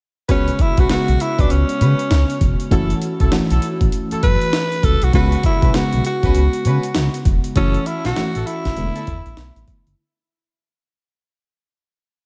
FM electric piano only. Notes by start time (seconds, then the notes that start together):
0.29 C#3 G#3 B3 F#4
0.90 C#3 G#3 B3 F#4
2.71 E3 A3 C#4 F#4
3.31 E3 A3 C#4 F#4
5.14 C#3 G#3 B3 F#4
5.74 C#3 G#3 B3 F#4
7.56 E3 A3 C#4 F#4
8.17 E3 A3 C#4 F#4
8.77 D3 G#3 B3 E4
8.84 A3